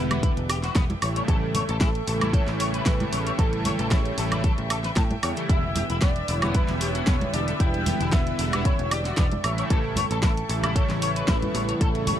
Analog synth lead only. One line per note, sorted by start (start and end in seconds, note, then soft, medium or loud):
0.00 0.98 B4 loud
1.28 1.77 A4 loud
1.81 2.35 A4 loud
2.33 2.87 C#5 loud
2.85 3.37 B4 loud
3.38 3.92 A4 loud
3.91 4.70 C#5 loud
5.50 5.99 E5 loud
6.02 6.38 D5 loud
6.38 6.56 C#5 loud
6.55 6.83 B4 loud
6.81 7.33 C#5 loud
7.33 7.62 D5 loud
7.60 8.14 G5 loud
8.13 8.65 E5 loud
8.66 8.93 C#5 loud
8.92 9.46 D5 loud
9.44 9.72 E5 loud
9.71 10.22 A4 loud
10.23 10.78 A4 loud
10.76 11.30 C#5 loud
11.28 11.83 B4 loud
11.81 12.20 A4 loud